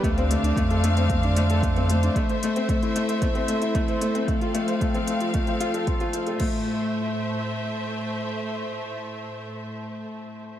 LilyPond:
<<
  \new Staff \with { instrumentName = "String section" } { \time 4/4 \key a \minor \tempo 4 = 113 << { <d d' f''>1 | <a a' e''>1 | <f c' f''>1 | <a, a c'' e''>1~ |
<a, a c'' e''>1 | } \\ { c''1~ | c''1 | r1 | r1 |
r1 | } >> }
  \new Staff \with { instrumentName = "Grand piano" } { \time 4/4 \key a \minor a16 c'16 a16 d'16 a16 a'16 a16 c'16 a16 d'16 a16 a'16 a16 c'16 a16 d'16 | a16 c''16 a16 c'16 a16 e'16 a16 c''16 a16 c'16 a16 e'16 a16 c''16 a16 c'16 | a16 f'16 a16 c''16 a16 c'16 a16 f'16 a16 c''16 f'16 a'16 f'16 f'16 c''16 a'16 | a8 r2. r8 |
r1 | }
  \new Staff \with { instrumentName = "Sub bass" } { \clef bass \time 4/4 \key a \minor d,8. d,16 f,2. | r1 | r1 | r1 |
r1 | }
  \new DrumStaff \with { instrumentName = "Drums" } \drummode { \time 4/4 <hh bd>16 hh16 hh16 hh16 <hh bd>16 hh16 hh16 hh16 <hh bd>16 hh16 hh16 hh16 <hh bd>16 hh16 hh16 hh16 | <hh bd>16 hh16 hh16 hh16 <hh bd>16 hh16 hh16 hh16 <hh bd>16 hh16 hh16 hh16 <hh bd>16 hh16 hh16 hh16 | <hh bd>16 hh16 hh16 hh16 <hh bd>16 hh16 hh16 hh16 <hh bd>16 hh16 hh16 hh16 <hh bd>16 hh16 hh16 hh16 | <cymc bd>4 r4 r4 r4 |
r4 r4 r4 r4 | }
>>